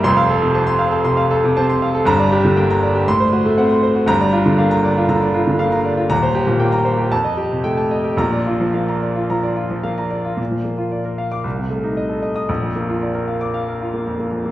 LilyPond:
<<
  \new Staff \with { instrumentName = "Grand piano" } { \time 4/4 \key bes \major \tempo 4 = 116 << { c'''8 r2. r8 | bes''8 r4. c'''8 r4. | bes''8 r2. r8 | bes''8 r4. a''8 r4. |
bes''8 r2. r8 | r4. r16 d'''16 r4. r16 ees'''16 | r4. r16 d'''8 r4. r16 | } \\ { r16 f''16 a'16 c16 a''16 c'''16 f''16 a'16 c'''16 f''16 a'16 c16 a''16 c'''16 f''16 a'16 | r16 d''16 g'16 d16 g''16 bes''16 d''16 g'16 r16 c''16 fis'16 a16 fis''16 c'''16 c''16 fis'16 | r16 d''16 f'16 d16 f''16 bes''16 d''16 f'16 bes''16 d''16 f'16 d16 f''16 bes''16 d''16 f'16 | r16 c''16 g'16 bes,16 g''16 bes''16 c''16 g'16 r16 ees''16 g'16 c16 g''16 a''16 ees''16 g'16 |
r16 d''16 f'16 f16 f''16 bes''16 d''16 f'16 bes''16 d''16 f'16 f16 f''16 bes''16 d''16 f'16 | r1 | r1 | } >> }
  \new Staff \with { instrumentName = "Grand piano" } { \time 4/4 \key bes \major <f,, f,>4 c'8 r8 c8 r8 c'8 r8 | <g,, g,>4 bes8 r8 a,4 c'8 r8 | <g,, g,>4 bes8 r8 d8 r8 bes8 r8 | <ees,, ees,>4 bes8 r8 f,4 a8 r8 |
<bes,, bes,>4 bes8 r8 f8 r8 bes8 r8 | bes,16 f16 bes16 f'16 d''16 bes'16 f''8 c,16 c16 a16 ees'16 ees''16 a'16 ees''8 | bes,,16 f,16 bes16 f'16 d''16 bes'16 f''8 f''16 bes'16 f'16 bes16 f,16 bes16 f,16 bes16 | }
>>